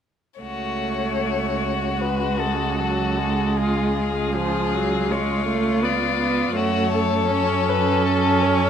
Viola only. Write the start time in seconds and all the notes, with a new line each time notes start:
0.41 A3
2.01 G#3
2.79 F#3
3.17 G#3
4.35 F3
4.74 F#3
5.10 G#3
5.46 A3
5.82 B3
6.19 B3
6.55 A3
7.31 C#4